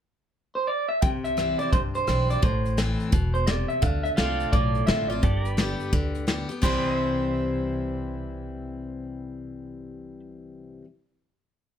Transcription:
0.55 clean electric guitar C5
0.67 clean electric guitar D5
0.89 clean electric guitar E5
1.02 upright bass C2, steel-string acoustic guitar C3, clean electric guitar G5, kick, closed hi-hat
1.24 clean electric guitar E5, closed hi-hat
1.37 steel-string acoustic guitar E3 G3 C4 E4, cross-stick, closed hi-hat
1.59 steel-string acoustic guitar C4 E4, clean electric guitar D5, closed hi-hat
1.72 upright bass C2, steel-string acoustic guitar G2, clean electric guitar C5, kick, closed hi-hat
1.95 clean electric guitar C5, closed hi-hat
2.07 upright bass B1, steel-string acoustic guitar E3 G3 C4 E4, cross-stick, closed hi-hat
2.30 clean electric guitar D5, closed hi-hat
2.42 upright bass A1, steel-string acoustic guitar A2, clean electric guitar C5, kick, closed hi-hat
2.65 closed hi-hat
2.77 steel-string acoustic guitar E3 A3 C4 E4, snare, closed hi-hat
3.00 closed hi-hat
3.12 upright bass E1, steel-string acoustic guitar B2, kick, closed hi-hat
3.34 clean electric guitar C5, closed hi-hat
3.47 steel-string acoustic guitar C3, clean electric guitar D5, snare, closed hi-hat
3.68 clean electric guitar E5, closed hi-hat
3.82 upright bass D2, steel-string acoustic guitar D3, clean electric guitar F5, kick, closed hi-hat
4.04 clean electric guitar E5, closed hi-hat
4.17 upright bass C2, steel-string acoustic guitar D3 A3 C4 F4, pedal steel guitar F4 A4 D5, clean electric guitar F5, snare, closed hi-hat
4.40 closed hi-hat
4.52 upright bass B1, steel-string acoustic guitar A2, clean electric guitar D5, kick, closed hi-hat
4.75 closed hi-hat
4.87 upright bass A1, steel-string acoustic guitar D3 A3 C4 F4, clean electric guitar E5, snare, closed hi-hat
5.08 steel-string acoustic guitar C4 F4, clean electric guitar D5, closed hi-hat
5.23 upright bass G1, steel-string acoustic guitar G2, pedal steel guitar G4 A4 D5, kick, closed hi-hat
5.45 closed hi-hat
5.49 pedal steel guitar B4
5.57 steel-string acoustic guitar D3 G3 B3 G4, snare, closed hi-hat
5.80 closed hi-hat
5.93 upright bass D2, steel-string acoustic guitar D3, kick, closed hi-hat
6.14 closed hi-hat
6.27 steel-string acoustic guitar D3 G3 B3 G4, snare, closed hi-hat
6.49 steel-string acoustic guitar B3 G4, closed hi-hat
6.62 upright bass C2, steel-string acoustic guitar C3 E3 G3 C4 E4, pedal steel guitar G4 B4 D5, clean electric guitar C5, kick, crash
6.84 pedal steel guitar D#5
6.89 pedal steel guitar C5
6.97 pedal steel guitar E5

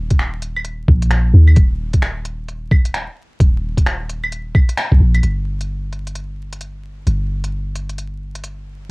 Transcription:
Already playing: 808-style bass D#1
0.11 kick, closed hi-hat
0.19 finger snap
0.42 closed hi-hat
0.56 claves
0.65 closed hi-hat
0.88 808-style bass A#1, kick
1.02 closed hi-hat
1.11 finger snap, closed hi-hat
1.34 808-style bass D#2
1.48 claves
1.56 808-style bass D#1, kick, closed hi-hat
1.93 kick, closed hi-hat
2.02 finger snap
2.25 closed hi-hat
2.48 closed hi-hat
2.71 kick, claves
2.85 closed hi-hat
2.94 finger snap, closed hi-hat
3.40 808-style bass D#1, kick, closed hi-hat
3.77 kick, closed hi-hat
3.86 finger snap
4.09 closed hi-hat
4.24 claves
4.32 closed hi-hat
4.55 kick, claves
4.69 closed hi-hat
4.77 finger snap, closed hi-hat
4.92 808-style bass A#1, kick
5.00 808-style bass A#1
5.15 closed hi-hat, claves
5.23 808-style bass G1, closed hi-hat
5.61 closed hi-hat
5.93 closed hi-hat
6.07 closed hi-hat
6.15 closed hi-hat
6.53 closed hi-hat
6.61 closed hi-hat
7.07 808-style bass G1, closed hi-hat
7.44 closed hi-hat
7.75 closed hi-hat
7.89 closed hi-hat
7.98 closed hi-hat
8.35 closed hi-hat
8.44 closed hi-hat

